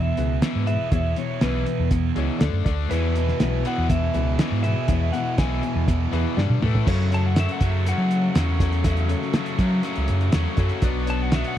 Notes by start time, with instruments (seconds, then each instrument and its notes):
Already playing: overdriven electric guitar E2 B2, distorted electric guitar E2 B2 E3 B3 E4 G#4, electric slide guitar E5
0.17 fingered electric bass C#2, overdriven electric guitar E2 B2, grand piano E4 G#4 B4, snare, closed hi-hat
0.42 overdriven electric guitar E2 B2 E3, snare, closed hi-hat
0.55 fingered electric bass G#2
0.66 overdriven electric guitar E2 B2, distorted electric guitar E2 B2 E3 B3 E4 G#4, grand piano E4 G#4 B4, electric slide guitar E5, closed hi-hat
0.90 distorted electric guitar E2 B2 E3 B3 E4 G#4, fingered electric bass E2, overdriven electric guitar E2 B2, grand piano E4 G#4 C#5, electric slide guitar E5, kick, closed hi-hat
1.16 overdriven electric guitar E2 B2, electric slide guitar C#5, closed hi-hat
1.41 fingered electric bass B1, overdriven electric guitar E2 B2 E3, electric slide guitar B4, snare, closed hi-hat
1.66 overdriven electric guitar E2 B2, closed hi-hat
1.79 fingered electric bass E2
1.91 overdriven electric guitar E2 B2, kick, closed hi-hat
2.15 fingered electric bass C#2, overdriven electric guitar E2 B2 E3, grand piano E4 G#4 C#5, closed hi-hat
2.39 fingered electric bass D2, overdriven electric guitar D3 A3 D4, grand piano D4 A4 D5, snare, closed hi-hat
2.53 fingered electric bass F#2
2.64 fingered electric bass D2, overdriven electric guitar D3 A3 D4, grand piano D4 A4 D5, kick, closed hi-hat
2.89 distorted electric guitar E2 B2 E3 B3 E4 G#4, fingered electric bass E2, overdriven electric guitar E2 B2 E3, grand piano E4 G#4 B4, electric slide guitar B4, closed hi-hat
3.15 overdriven electric guitar E2 B2 E3, closed hi-hat
3.28 snare
3.40 fingered electric bass B1, overdriven electric guitar E2 B2 E3, electric slide guitar B4, snare, closed hi-hat
3.65 overdriven electric guitar E2 B2 E3, electric slide guitar F#5, closed hi-hat
3.78 fingered electric bass E2
3.90 overdriven electric guitar E2 B2 E3, electric slide guitar E5, kick, closed hi-hat
4.14 fingered electric bass C#2, overdriven electric guitar E2 B2 E3, grand piano E4 G#4 B4, closed hi-hat
4.39 overdriven electric guitar E2 B2 E3, snare, closed hi-hat
4.52 fingered electric bass G#2
4.62 overdriven electric guitar E2 B2 E3, distorted electric guitar E2 B2 E3 B3 E4 G#4, grand piano E4 G#4 B4, electric slide guitar E5, closed hi-hat
4.87 distorted electric guitar E2 B2 E3 B3 E4 G#4, overdriven electric guitar E2 B2 E3, fingered electric bass E2, grand piano E4 G#4 C#5, kick, closed hi-hat
5.12 overdriven electric guitar E2 B2 E3, electric slide guitar F#5, closed hi-hat
5.38 fingered electric bass B1, overdriven electric guitar E2 B2 E3, electric slide guitar G#5, kick, snare, closed hi-hat
5.63 overdriven electric guitar E2 B2 E3, closed hi-hat
5.75 fingered electric bass E2
5.88 overdriven electric guitar E2 B2 E3, kick, closed hi-hat
6.12 overdriven electric guitar E2 B2 E3, fingered electric bass E2, grand piano E4 G#4 B4, snare, closed hi-hat
6.37 overdriven electric guitar G2 D3 G3, fingered electric bass G2, grand piano D4 G4 D5, snare
6.50 fingered electric bass B2, high tom
6.62 overdriven electric guitar A2 E3 A3, fingered electric bass A2, grand piano E4 A4 E5, mid tom
6.75 floor tom
6.85 distorted electric guitar F#2 C#3 F#3 A3 C#4 F#4, overdriven electric guitar F#2 C#3 F#3, fingered electric bass F#2, grand piano C#4 F#4 A4 C#5, kick, crash
7.11 grand piano C#4 F#4 A4 C#5, electric slide guitar A5, closed hi-hat
7.27 electric slide guitar F#5
7.36 overdriven electric guitar F#2 C#3 F#3, distorted electric guitar F#2 C#3 F#3 A3 C#4 F#4, electric slide guitar E5, snare, closed hi-hat
7.49 electric slide guitar F#5, closed hi-hat
7.61 fingered electric bass F#2, overdriven electric guitar F#2 C#3 F#3, distorted electric guitar F#2 C#3 F#3 A3 C#4 F#4, electric slide guitar E5, kick, closed hi-hat
7.86 overdriven electric guitar F#2 C#3 F#3, distorted electric guitar F#2 C#3 F#3 A3 C#4 F#4, electric slide guitar F#5, closed hi-hat
7.98 fingered electric bass F#3
8.11 closed hi-hat
8.35 fingered electric bass E2, distorted electric guitar F#2 C#3 F#3 A3 C#4 F#4, overdriven electric guitar F#2 C#3 F#3, snare, closed hi-hat
8.59 distorted electric guitar F#2 C#3 F#3 A3 C#4 F#4, overdriven electric guitar F#2 C#3 F#3, grand piano C#4 F#4 A4 C#5, kick, closed hi-hat
8.72 closed hi-hat
8.84 distorted electric guitar F#2 C#3 F#3 A3 C#4 F#4, overdriven electric guitar F#2 C#3 F#3, grand piano C#4 F#4 A4 E5, kick, closed hi-hat
8.97 closed hi-hat
9.08 grand piano C#4 F#4 A4 C#5, closed hi-hat
9.22 snare
9.33 distorted electric guitar F#2 C#3 F#3 A3 C#4 F#4, overdriven electric guitar F#2 C#3 F#3, snare, closed hi-hat
9.46 closed hi-hat
9.58 distorted electric guitar F#2 C#3 F#3 A3 C#4 F#4, overdriven electric guitar F#2 C#3 F#3, fingered electric bass F#3, kick, closed hi-hat
9.83 distorted electric guitar F#2 C#3 F#3 A3 C#4 F#4, overdriven electric guitar F#2 C#3 F#3, closed hi-hat
9.96 fingered electric bass C#2, closed hi-hat
10.08 fingered electric bass F#2, closed hi-hat
10.21 closed hi-hat
10.32 fingered electric bass E2, distorted electric guitar F#2 C#3 F#3 A3 C#4 F#4, overdriven electric guitar F#2 C#3 F#3, snare, closed hi-hat
10.56 fingered electric bass F#2, distorted electric guitar F#2 C#3 F#3 A3 C#4 F#4, overdriven electric guitar F#2 C#3 F#3, grand piano C#4 F#4 A4 C#5, kick, closed hi-hat
10.69 closed hi-hat
10.82 fingered electric bass B1, distorted electric guitar B2 F#3 B3 D4 F#4, overdriven electric guitar B2 F#3 B3, grand piano D4 F#4 B4 D5, kick, closed hi-hat
11.06 grand piano D4 F#4 B4 C#5, electric slide guitar A5, closed hi-hat
11.22 electric slide guitar F#5
11.32 distorted electric guitar B2 F#3 B3 D4 F#4, overdriven electric guitar B2 F#3 B3, electric slide guitar E5, snare, closed hi-hat
11.44 electric slide guitar F#5, closed hi-hat